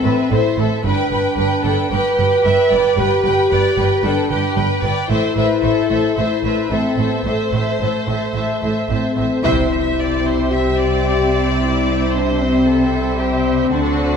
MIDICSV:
0, 0, Header, 1, 9, 480
1, 0, Start_track
1, 0, Tempo, 532860
1, 759, Time_signature, 4, 2, 24, 8
1, 5562, Tempo, 545951
1, 8442, Tempo, 535236
1, 12673, End_track
2, 0, Start_track
2, 0, Title_t, "Violin section"
2, 0, Program_c, 0, 48
2, 44, Note_on_c, 0, 72, 42
2, 48, Note_on_c, 0, 76, 42
2, 278, Note_off_c, 0, 72, 0
2, 280, Note_off_c, 0, 76, 0
2, 301, Note_on_c, 0, 72, 50
2, 305, Note_on_c, 0, 76, 47
2, 516, Note_off_c, 0, 72, 0
2, 520, Note_off_c, 0, 76, 0
2, 527, Note_on_c, 0, 72, 41
2, 531, Note_on_c, 0, 76, 41
2, 758, Note_off_c, 0, 72, 0
2, 760, Note_off_c, 0, 76, 0
2, 774, Note_on_c, 0, 71, 54
2, 774, Note_on_c, 0, 79, 56
2, 1001, Note_off_c, 0, 71, 0
2, 1001, Note_off_c, 0, 79, 0
2, 1011, Note_on_c, 0, 71, 50
2, 1012, Note_on_c, 0, 79, 48
2, 1236, Note_off_c, 0, 71, 0
2, 1241, Note_off_c, 0, 79, 0
2, 1246, Note_on_c, 0, 71, 49
2, 1252, Note_on_c, 0, 79, 45
2, 1480, Note_off_c, 0, 79, 0
2, 1481, Note_off_c, 0, 71, 0
2, 1490, Note_on_c, 0, 71, 45
2, 1491, Note_on_c, 0, 79, 45
2, 1721, Note_off_c, 0, 71, 0
2, 1721, Note_off_c, 0, 79, 0
2, 1732, Note_on_c, 0, 71, 48
2, 1732, Note_on_c, 0, 79, 50
2, 1954, Note_off_c, 0, 79, 0
2, 1955, Note_off_c, 0, 71, 0
2, 1964, Note_on_c, 0, 79, 46
2, 1966, Note_on_c, 0, 71, 47
2, 2190, Note_off_c, 0, 71, 0
2, 2195, Note_off_c, 0, 79, 0
2, 2201, Note_on_c, 0, 71, 51
2, 2206, Note_on_c, 0, 79, 49
2, 2428, Note_off_c, 0, 79, 0
2, 2432, Note_off_c, 0, 71, 0
2, 2438, Note_on_c, 0, 79, 45
2, 2443, Note_on_c, 0, 71, 45
2, 2675, Note_off_c, 0, 71, 0
2, 2677, Note_off_c, 0, 79, 0
2, 2686, Note_on_c, 0, 71, 56
2, 2688, Note_on_c, 0, 79, 55
2, 2913, Note_off_c, 0, 79, 0
2, 2915, Note_off_c, 0, 71, 0
2, 2924, Note_on_c, 0, 79, 51
2, 2926, Note_on_c, 0, 71, 46
2, 3149, Note_off_c, 0, 71, 0
2, 3158, Note_off_c, 0, 79, 0
2, 3160, Note_on_c, 0, 71, 47
2, 3168, Note_on_c, 0, 79, 51
2, 3395, Note_off_c, 0, 79, 0
2, 3396, Note_off_c, 0, 71, 0
2, 3406, Note_on_c, 0, 79, 46
2, 3407, Note_on_c, 0, 71, 48
2, 3620, Note_off_c, 0, 79, 0
2, 3623, Note_off_c, 0, 71, 0
2, 3630, Note_on_c, 0, 79, 47
2, 3633, Note_on_c, 0, 71, 49
2, 3870, Note_off_c, 0, 79, 0
2, 3872, Note_off_c, 0, 71, 0
2, 3880, Note_on_c, 0, 79, 47
2, 3882, Note_on_c, 0, 71, 46
2, 4109, Note_off_c, 0, 79, 0
2, 4111, Note_off_c, 0, 71, 0
2, 4120, Note_on_c, 0, 79, 47
2, 4122, Note_on_c, 0, 71, 47
2, 4347, Note_off_c, 0, 71, 0
2, 4349, Note_off_c, 0, 79, 0
2, 4358, Note_on_c, 0, 71, 43
2, 4360, Note_on_c, 0, 79, 42
2, 4593, Note_off_c, 0, 71, 0
2, 4594, Note_off_c, 0, 79, 0
2, 4595, Note_on_c, 0, 76, 51
2, 4826, Note_off_c, 0, 76, 0
2, 4837, Note_on_c, 0, 76, 45
2, 4841, Note_off_c, 0, 76, 0
2, 4841, Note_on_c, 0, 76, 44
2, 5062, Note_off_c, 0, 76, 0
2, 5073, Note_on_c, 0, 76, 46
2, 5074, Note_off_c, 0, 76, 0
2, 5074, Note_on_c, 0, 76, 42
2, 5308, Note_off_c, 0, 76, 0
2, 5319, Note_on_c, 0, 76, 37
2, 5325, Note_off_c, 0, 76, 0
2, 5325, Note_on_c, 0, 76, 39
2, 5541, Note_off_c, 0, 76, 0
2, 5552, Note_on_c, 0, 76, 41
2, 5556, Note_off_c, 0, 76, 0
2, 5556, Note_on_c, 0, 76, 41
2, 5788, Note_off_c, 0, 76, 0
2, 5798, Note_on_c, 0, 76, 38
2, 6023, Note_off_c, 0, 76, 0
2, 6033, Note_on_c, 0, 76, 39
2, 6036, Note_off_c, 0, 76, 0
2, 6036, Note_on_c, 0, 76, 40
2, 6266, Note_off_c, 0, 76, 0
2, 6277, Note_on_c, 0, 76, 35
2, 6278, Note_off_c, 0, 76, 0
2, 6278, Note_on_c, 0, 76, 36
2, 6510, Note_off_c, 0, 76, 0
2, 6520, Note_on_c, 0, 76, 40
2, 6523, Note_off_c, 0, 76, 0
2, 6523, Note_on_c, 0, 76, 41
2, 6756, Note_off_c, 0, 76, 0
2, 6767, Note_on_c, 0, 76, 36
2, 6993, Note_off_c, 0, 76, 0
2, 7004, Note_on_c, 0, 76, 35
2, 7006, Note_off_c, 0, 76, 0
2, 7006, Note_on_c, 0, 76, 36
2, 7238, Note_off_c, 0, 76, 0
2, 7248, Note_on_c, 0, 76, 31
2, 7251, Note_off_c, 0, 76, 0
2, 7251, Note_on_c, 0, 76, 33
2, 7461, Note_off_c, 0, 76, 0
2, 7472, Note_on_c, 0, 76, 35
2, 7473, Note_off_c, 0, 76, 0
2, 7473, Note_on_c, 0, 76, 35
2, 7706, Note_off_c, 0, 76, 0
2, 7717, Note_on_c, 0, 76, 34
2, 7720, Note_off_c, 0, 76, 0
2, 7720, Note_on_c, 0, 76, 33
2, 7946, Note_off_c, 0, 76, 0
2, 7957, Note_on_c, 0, 76, 34
2, 7961, Note_off_c, 0, 76, 0
2, 7961, Note_on_c, 0, 76, 34
2, 8184, Note_off_c, 0, 76, 0
2, 8195, Note_on_c, 0, 76, 29
2, 8199, Note_off_c, 0, 76, 0
2, 8199, Note_on_c, 0, 76, 30
2, 8414, Note_off_c, 0, 76, 0
2, 8425, Note_on_c, 0, 76, 57
2, 8427, Note_off_c, 0, 76, 0
2, 8427, Note_on_c, 0, 76, 62
2, 12240, Note_off_c, 0, 76, 0
2, 12275, Note_on_c, 0, 81, 54
2, 12278, Note_on_c, 0, 78, 55
2, 12673, Note_off_c, 0, 78, 0
2, 12673, Note_off_c, 0, 81, 0
2, 12673, End_track
3, 0, Start_track
3, 0, Title_t, "Viola section"
3, 0, Program_c, 1, 48
3, 36, Note_on_c, 1, 69, 40
3, 38, Note_off_c, 1, 69, 0
3, 38, Note_on_c, 1, 69, 42
3, 275, Note_off_c, 1, 69, 0
3, 285, Note_on_c, 1, 69, 44
3, 287, Note_off_c, 1, 69, 0
3, 287, Note_on_c, 1, 69, 46
3, 516, Note_off_c, 1, 69, 0
3, 527, Note_on_c, 1, 69, 42
3, 530, Note_off_c, 1, 69, 0
3, 530, Note_on_c, 1, 69, 44
3, 759, Note_off_c, 1, 69, 0
3, 771, Note_on_c, 1, 71, 49
3, 991, Note_off_c, 1, 71, 0
3, 1002, Note_on_c, 1, 71, 45
3, 1003, Note_off_c, 1, 71, 0
3, 1003, Note_on_c, 1, 71, 48
3, 1228, Note_off_c, 1, 71, 0
3, 1239, Note_on_c, 1, 71, 47
3, 1242, Note_off_c, 1, 71, 0
3, 1242, Note_on_c, 1, 71, 49
3, 1479, Note_off_c, 1, 71, 0
3, 1488, Note_on_c, 1, 71, 43
3, 1489, Note_off_c, 1, 71, 0
3, 1489, Note_on_c, 1, 71, 45
3, 1715, Note_off_c, 1, 71, 0
3, 1726, Note_on_c, 1, 71, 50
3, 1727, Note_off_c, 1, 71, 0
3, 1727, Note_on_c, 1, 71, 55
3, 1956, Note_off_c, 1, 71, 0
3, 1967, Note_on_c, 1, 71, 44
3, 1969, Note_off_c, 1, 71, 0
3, 1969, Note_on_c, 1, 71, 44
3, 2187, Note_off_c, 1, 71, 0
3, 2198, Note_on_c, 1, 71, 46
3, 2426, Note_off_c, 1, 71, 0
3, 2437, Note_on_c, 1, 71, 42
3, 2443, Note_off_c, 1, 71, 0
3, 2443, Note_on_c, 1, 71, 45
3, 2667, Note_off_c, 1, 71, 0
3, 2677, Note_on_c, 1, 71, 54
3, 2680, Note_off_c, 1, 71, 0
3, 2680, Note_on_c, 1, 71, 52
3, 2913, Note_off_c, 1, 71, 0
3, 2924, Note_on_c, 1, 71, 48
3, 2925, Note_off_c, 1, 71, 0
3, 2925, Note_on_c, 1, 71, 46
3, 3153, Note_off_c, 1, 71, 0
3, 3164, Note_on_c, 1, 71, 46
3, 3165, Note_off_c, 1, 71, 0
3, 3165, Note_on_c, 1, 71, 52
3, 3384, Note_off_c, 1, 71, 0
3, 3395, Note_on_c, 1, 71, 45
3, 3396, Note_off_c, 1, 71, 0
3, 3396, Note_on_c, 1, 71, 46
3, 3627, Note_off_c, 1, 71, 0
3, 3638, Note_on_c, 1, 71, 54
3, 3641, Note_off_c, 1, 71, 0
3, 3641, Note_on_c, 1, 71, 50
3, 3860, Note_off_c, 1, 71, 0
3, 3871, Note_on_c, 1, 71, 44
3, 3873, Note_off_c, 1, 71, 0
3, 3873, Note_on_c, 1, 71, 45
3, 4103, Note_off_c, 1, 71, 0
3, 4114, Note_on_c, 1, 71, 46
3, 4115, Note_off_c, 1, 71, 0
3, 4115, Note_on_c, 1, 71, 46
3, 4343, Note_off_c, 1, 71, 0
3, 4354, Note_on_c, 1, 71, 44
3, 4355, Note_off_c, 1, 71, 0
3, 4355, Note_on_c, 1, 71, 41
3, 4591, Note_off_c, 1, 71, 0
3, 4592, Note_on_c, 1, 72, 49
3, 4593, Note_on_c, 1, 69, 51
3, 4818, Note_off_c, 1, 69, 0
3, 4822, Note_off_c, 1, 72, 0
3, 4829, Note_on_c, 1, 69, 44
3, 4832, Note_on_c, 1, 72, 41
3, 5062, Note_off_c, 1, 69, 0
3, 5064, Note_off_c, 1, 72, 0
3, 5073, Note_on_c, 1, 69, 44
3, 5075, Note_on_c, 1, 72, 45
3, 5307, Note_off_c, 1, 69, 0
3, 5313, Note_off_c, 1, 72, 0
3, 5318, Note_on_c, 1, 69, 40
3, 5324, Note_on_c, 1, 72, 37
3, 5548, Note_off_c, 1, 69, 0
3, 5548, Note_off_c, 1, 72, 0
3, 5558, Note_on_c, 1, 69, 43
3, 5559, Note_on_c, 1, 72, 42
3, 5780, Note_off_c, 1, 72, 0
3, 5783, Note_off_c, 1, 69, 0
3, 5790, Note_on_c, 1, 72, 35
3, 5793, Note_on_c, 1, 69, 38
3, 6027, Note_off_c, 1, 72, 0
3, 6029, Note_off_c, 1, 69, 0
3, 6038, Note_on_c, 1, 69, 37
3, 6038, Note_on_c, 1, 72, 39
3, 6264, Note_off_c, 1, 69, 0
3, 6265, Note_off_c, 1, 72, 0
3, 6275, Note_on_c, 1, 69, 34
3, 6276, Note_on_c, 1, 72, 33
3, 6507, Note_off_c, 1, 72, 0
3, 6509, Note_off_c, 1, 69, 0
3, 6518, Note_on_c, 1, 72, 37
3, 6520, Note_on_c, 1, 69, 38
3, 6751, Note_off_c, 1, 69, 0
3, 6753, Note_off_c, 1, 72, 0
3, 6761, Note_on_c, 1, 69, 32
3, 6767, Note_on_c, 1, 72, 34
3, 6991, Note_off_c, 1, 69, 0
3, 6991, Note_off_c, 1, 72, 0
3, 7001, Note_on_c, 1, 72, 36
3, 7002, Note_on_c, 1, 69, 36
3, 7228, Note_off_c, 1, 72, 0
3, 7229, Note_off_c, 1, 69, 0
3, 7239, Note_on_c, 1, 72, 33
3, 7240, Note_on_c, 1, 69, 30
3, 7469, Note_off_c, 1, 69, 0
3, 7471, Note_off_c, 1, 72, 0
3, 7480, Note_on_c, 1, 69, 36
3, 7481, Note_on_c, 1, 72, 36
3, 7710, Note_off_c, 1, 72, 0
3, 7712, Note_off_c, 1, 69, 0
3, 7721, Note_on_c, 1, 72, 32
3, 7723, Note_on_c, 1, 69, 33
3, 7952, Note_off_c, 1, 69, 0
3, 7954, Note_off_c, 1, 72, 0
3, 7963, Note_on_c, 1, 69, 33
3, 7964, Note_on_c, 1, 72, 32
3, 8194, Note_off_c, 1, 69, 0
3, 8194, Note_off_c, 1, 72, 0
3, 8204, Note_on_c, 1, 69, 31
3, 8204, Note_on_c, 1, 72, 30
3, 8429, Note_off_c, 1, 72, 0
3, 8438, Note_off_c, 1, 69, 0
3, 8440, Note_on_c, 1, 72, 57
3, 8441, Note_off_c, 1, 72, 0
3, 8441, Note_on_c, 1, 72, 59
3, 12248, Note_off_c, 1, 72, 0
3, 12273, Note_on_c, 1, 72, 51
3, 12276, Note_on_c, 1, 69, 48
3, 12673, Note_off_c, 1, 69, 0
3, 12673, Note_off_c, 1, 72, 0
3, 12673, End_track
4, 0, Start_track
4, 0, Title_t, "Violin section"
4, 0, Program_c, 2, 48
4, 48, Note_on_c, 2, 71, 55
4, 285, Note_off_c, 2, 71, 0
4, 290, Note_on_c, 2, 72, 56
4, 525, Note_off_c, 2, 72, 0
4, 527, Note_on_c, 2, 69, 50
4, 753, Note_on_c, 2, 71, 54
4, 763, Note_off_c, 2, 69, 0
4, 1220, Note_off_c, 2, 71, 0
4, 1231, Note_on_c, 2, 71, 59
4, 1473, Note_off_c, 2, 71, 0
4, 1484, Note_on_c, 2, 69, 52
4, 1724, Note_on_c, 2, 67, 56
4, 1727, Note_off_c, 2, 69, 0
4, 2195, Note_off_c, 2, 67, 0
4, 2217, Note_on_c, 2, 76, 64
4, 2451, Note_off_c, 2, 76, 0
4, 2454, Note_on_c, 2, 74, 54
4, 2689, Note_off_c, 2, 74, 0
4, 2692, Note_on_c, 2, 71, 57
4, 3167, Note_off_c, 2, 71, 0
4, 3175, Note_on_c, 2, 74, 56
4, 3408, Note_off_c, 2, 74, 0
4, 3421, Note_on_c, 2, 71, 56
4, 3646, Note_on_c, 2, 69, 53
4, 3651, Note_off_c, 2, 71, 0
4, 3883, Note_off_c, 2, 69, 0
4, 3887, Note_on_c, 2, 67, 53
4, 4118, Note_off_c, 2, 67, 0
4, 4133, Note_on_c, 2, 71, 55
4, 4360, Note_on_c, 2, 74, 56
4, 4365, Note_off_c, 2, 71, 0
4, 4599, Note_off_c, 2, 74, 0
4, 4604, Note_on_c, 2, 72, 58
4, 4837, Note_off_c, 2, 72, 0
4, 4851, Note_on_c, 2, 71, 51
4, 5081, Note_off_c, 2, 71, 0
4, 5094, Note_on_c, 2, 69, 54
4, 5569, Note_off_c, 2, 69, 0
4, 5585, Note_on_c, 2, 72, 51
4, 5809, Note_on_c, 2, 71, 44
4, 5810, Note_off_c, 2, 72, 0
4, 6036, Note_off_c, 2, 71, 0
4, 6043, Note_on_c, 2, 69, 46
4, 6520, Note_off_c, 2, 69, 0
4, 6521, Note_on_c, 2, 72, 50
4, 8171, Note_off_c, 2, 72, 0
4, 8444, Note_on_c, 2, 72, 65
4, 8668, Note_off_c, 2, 72, 0
4, 8685, Note_on_c, 2, 76, 46
4, 8924, Note_on_c, 2, 74, 46
4, 8925, Note_off_c, 2, 76, 0
4, 9165, Note_off_c, 2, 74, 0
4, 9178, Note_on_c, 2, 72, 45
4, 9412, Note_off_c, 2, 72, 0
4, 9412, Note_on_c, 2, 76, 52
4, 9650, Note_off_c, 2, 76, 0
4, 9650, Note_on_c, 2, 74, 55
4, 10841, Note_on_c, 2, 72, 53
4, 10847, Note_off_c, 2, 74, 0
4, 11323, Note_off_c, 2, 72, 0
4, 11329, Note_on_c, 2, 69, 53
4, 11807, Note_off_c, 2, 69, 0
4, 11808, Note_on_c, 2, 67, 44
4, 12274, Note_on_c, 2, 66, 52
4, 12285, Note_off_c, 2, 67, 0
4, 12673, Note_off_c, 2, 66, 0
4, 12673, End_track
5, 0, Start_track
5, 0, Title_t, "French horn section"
5, 0, Program_c, 3, 60
5, 0, Note_on_c, 3, 60, 65
5, 285, Note_on_c, 3, 64, 67
5, 289, Note_off_c, 3, 60, 0
5, 522, Note_off_c, 3, 64, 0
5, 759, Note_on_c, 3, 62, 66
5, 1690, Note_off_c, 3, 62, 0
5, 1728, Note_on_c, 3, 71, 85
5, 2667, Note_off_c, 3, 71, 0
5, 2686, Note_on_c, 3, 67, 73
5, 3623, Note_off_c, 3, 67, 0
5, 3644, Note_on_c, 3, 62, 65
5, 4360, Note_off_c, 3, 62, 0
5, 4589, Note_on_c, 3, 64, 80
5, 5522, Note_off_c, 3, 64, 0
5, 5558, Note_on_c, 3, 64, 69
5, 6025, Note_off_c, 3, 64, 0
5, 6028, Note_on_c, 3, 60, 59
5, 6392, Note_off_c, 3, 60, 0
5, 6408, Note_on_c, 3, 59, 47
5, 6520, Note_off_c, 3, 59, 0
5, 6522, Note_on_c, 3, 57, 47
5, 7935, Note_off_c, 3, 57, 0
5, 7956, Note_on_c, 3, 60, 48
5, 8406, Note_off_c, 3, 60, 0
5, 8429, Note_on_c, 3, 64, 66
5, 9364, Note_off_c, 3, 64, 0
5, 9389, Note_on_c, 3, 67, 68
5, 10226, Note_off_c, 3, 67, 0
5, 10379, Note_on_c, 3, 64, 58
5, 10842, Note_off_c, 3, 64, 0
5, 10858, Note_on_c, 3, 62, 62
5, 11092, Note_off_c, 3, 62, 0
5, 11106, Note_on_c, 3, 60, 53
5, 11576, Note_off_c, 3, 60, 0
5, 11820, Note_on_c, 3, 60, 62
5, 12258, Note_off_c, 3, 60, 0
5, 12291, Note_on_c, 3, 62, 72
5, 12673, Note_off_c, 3, 62, 0
5, 12673, End_track
6, 0, Start_track
6, 0, Title_t, "Trombone section"
6, 0, Program_c, 4, 61
6, 8428, Note_on_c, 4, 55, 64
6, 8429, Note_on_c, 4, 60, 62
6, 12240, Note_off_c, 4, 55, 0
6, 12241, Note_off_c, 4, 60, 0
6, 12283, Note_on_c, 4, 54, 57
6, 12290, Note_on_c, 4, 60, 54
6, 12673, Note_off_c, 4, 54, 0
6, 12673, Note_off_c, 4, 60, 0
6, 12673, End_track
7, 0, Start_track
7, 0, Title_t, "Cello section"
7, 0, Program_c, 5, 48
7, 46, Note_on_c, 5, 45, 48
7, 118, Note_off_c, 5, 45, 0
7, 282, Note_on_c, 5, 45, 53
7, 354, Note_off_c, 5, 45, 0
7, 520, Note_on_c, 5, 45, 48
7, 592, Note_off_c, 5, 45, 0
7, 760, Note_on_c, 5, 43, 58
7, 832, Note_off_c, 5, 43, 0
7, 1001, Note_on_c, 5, 43, 52
7, 1073, Note_off_c, 5, 43, 0
7, 1242, Note_on_c, 5, 43, 55
7, 1315, Note_off_c, 5, 43, 0
7, 1490, Note_on_c, 5, 43, 51
7, 1562, Note_off_c, 5, 43, 0
7, 1736, Note_on_c, 5, 43, 56
7, 1808, Note_off_c, 5, 43, 0
7, 1972, Note_on_c, 5, 43, 55
7, 2044, Note_off_c, 5, 43, 0
7, 2209, Note_on_c, 5, 43, 55
7, 2281, Note_off_c, 5, 43, 0
7, 2448, Note_on_c, 5, 43, 50
7, 2520, Note_off_c, 5, 43, 0
7, 2685, Note_on_c, 5, 43, 58
7, 2757, Note_off_c, 5, 43, 0
7, 2916, Note_on_c, 5, 43, 53
7, 2988, Note_off_c, 5, 43, 0
7, 3161, Note_on_c, 5, 43, 52
7, 3233, Note_off_c, 5, 43, 0
7, 3402, Note_on_c, 5, 43, 52
7, 3474, Note_off_c, 5, 43, 0
7, 3637, Note_on_c, 5, 43, 55
7, 3709, Note_off_c, 5, 43, 0
7, 3875, Note_on_c, 5, 43, 53
7, 3947, Note_off_c, 5, 43, 0
7, 4116, Note_on_c, 5, 43, 52
7, 4188, Note_off_c, 5, 43, 0
7, 4351, Note_on_c, 5, 43, 54
7, 4423, Note_off_c, 5, 43, 0
7, 4596, Note_on_c, 5, 45, 54
7, 4668, Note_off_c, 5, 45, 0
7, 4837, Note_on_c, 5, 45, 50
7, 4909, Note_off_c, 5, 45, 0
7, 5078, Note_on_c, 5, 45, 50
7, 5150, Note_off_c, 5, 45, 0
7, 5321, Note_on_c, 5, 45, 46
7, 5394, Note_off_c, 5, 45, 0
7, 5567, Note_on_c, 5, 45, 47
7, 5638, Note_off_c, 5, 45, 0
7, 5804, Note_on_c, 5, 45, 43
7, 5875, Note_off_c, 5, 45, 0
7, 6039, Note_on_c, 5, 45, 43
7, 6110, Note_off_c, 5, 45, 0
7, 6279, Note_on_c, 5, 45, 40
7, 6350, Note_off_c, 5, 45, 0
7, 6521, Note_on_c, 5, 45, 43
7, 6591, Note_off_c, 5, 45, 0
7, 6766, Note_on_c, 5, 45, 36
7, 6837, Note_off_c, 5, 45, 0
7, 7002, Note_on_c, 5, 45, 39
7, 7072, Note_off_c, 5, 45, 0
7, 7245, Note_on_c, 5, 45, 38
7, 7316, Note_off_c, 5, 45, 0
7, 7484, Note_on_c, 5, 45, 39
7, 7554, Note_off_c, 5, 45, 0
7, 7726, Note_on_c, 5, 45, 38
7, 7797, Note_off_c, 5, 45, 0
7, 7962, Note_on_c, 5, 45, 37
7, 8032, Note_off_c, 5, 45, 0
7, 8202, Note_on_c, 5, 45, 35
7, 8272, Note_off_c, 5, 45, 0
7, 8443, Note_on_c, 5, 48, 61
7, 12248, Note_off_c, 5, 48, 0
7, 12286, Note_on_c, 5, 50, 53
7, 12673, Note_off_c, 5, 50, 0
7, 12673, End_track
8, 0, Start_track
8, 0, Title_t, "Double bass section"
8, 0, Program_c, 6, 48
8, 40, Note_on_c, 6, 33, 50
8, 112, Note_off_c, 6, 33, 0
8, 279, Note_on_c, 6, 33, 52
8, 351, Note_off_c, 6, 33, 0
8, 519, Note_on_c, 6, 33, 49
8, 591, Note_off_c, 6, 33, 0
8, 762, Note_on_c, 6, 31, 56
8, 834, Note_off_c, 6, 31, 0
8, 1001, Note_on_c, 6, 31, 52
8, 1073, Note_off_c, 6, 31, 0
8, 1234, Note_on_c, 6, 31, 54
8, 1307, Note_off_c, 6, 31, 0
8, 1483, Note_on_c, 6, 31, 53
8, 1555, Note_off_c, 6, 31, 0
8, 1726, Note_on_c, 6, 31, 54
8, 1798, Note_off_c, 6, 31, 0
8, 1966, Note_on_c, 6, 31, 50
8, 2038, Note_off_c, 6, 31, 0
8, 2211, Note_on_c, 6, 31, 56
8, 2283, Note_off_c, 6, 31, 0
8, 2452, Note_on_c, 6, 31, 53
8, 2524, Note_off_c, 6, 31, 0
8, 2687, Note_on_c, 6, 31, 61
8, 2759, Note_off_c, 6, 31, 0
8, 2926, Note_on_c, 6, 31, 53
8, 2998, Note_off_c, 6, 31, 0
8, 3171, Note_on_c, 6, 31, 55
8, 3243, Note_off_c, 6, 31, 0
8, 3405, Note_on_c, 6, 31, 55
8, 3477, Note_off_c, 6, 31, 0
8, 3642, Note_on_c, 6, 31, 56
8, 3714, Note_off_c, 6, 31, 0
8, 3881, Note_on_c, 6, 31, 50
8, 3953, Note_off_c, 6, 31, 0
8, 4116, Note_on_c, 6, 31, 54
8, 4188, Note_off_c, 6, 31, 0
8, 4356, Note_on_c, 6, 31, 50
8, 4428, Note_off_c, 6, 31, 0
8, 4596, Note_on_c, 6, 33, 55
8, 4668, Note_off_c, 6, 33, 0
8, 4836, Note_on_c, 6, 33, 50
8, 4908, Note_off_c, 6, 33, 0
8, 5076, Note_on_c, 6, 33, 50
8, 5148, Note_off_c, 6, 33, 0
8, 5321, Note_on_c, 6, 33, 48
8, 5393, Note_off_c, 6, 33, 0
8, 5557, Note_on_c, 6, 33, 46
8, 5627, Note_off_c, 6, 33, 0
8, 5793, Note_on_c, 6, 33, 45
8, 5863, Note_off_c, 6, 33, 0
8, 6030, Note_on_c, 6, 33, 43
8, 6100, Note_off_c, 6, 33, 0
8, 6264, Note_on_c, 6, 33, 41
8, 6334, Note_off_c, 6, 33, 0
8, 6505, Note_on_c, 6, 33, 44
8, 6575, Note_off_c, 6, 33, 0
8, 6742, Note_on_c, 6, 33, 39
8, 6812, Note_off_c, 6, 33, 0
8, 6994, Note_on_c, 6, 33, 39
8, 7064, Note_off_c, 6, 33, 0
8, 7232, Note_on_c, 6, 33, 37
8, 7303, Note_off_c, 6, 33, 0
8, 7476, Note_on_c, 6, 33, 39
8, 7546, Note_off_c, 6, 33, 0
8, 7717, Note_on_c, 6, 33, 37
8, 7788, Note_off_c, 6, 33, 0
8, 7958, Note_on_c, 6, 33, 37
8, 8028, Note_off_c, 6, 33, 0
8, 8207, Note_on_c, 6, 33, 34
8, 8277, Note_off_c, 6, 33, 0
8, 8442, Note_on_c, 6, 36, 64
8, 12248, Note_off_c, 6, 36, 0
8, 12285, Note_on_c, 6, 38, 55
8, 12673, Note_off_c, 6, 38, 0
8, 12673, End_track
9, 0, Start_track
9, 0, Title_t, "Impact"
9, 0, Program_c, 7, 103
9, 8440, Note_on_c, 7, 60, 52
9, 10364, Note_off_c, 7, 60, 0
9, 12673, End_track
0, 0, End_of_file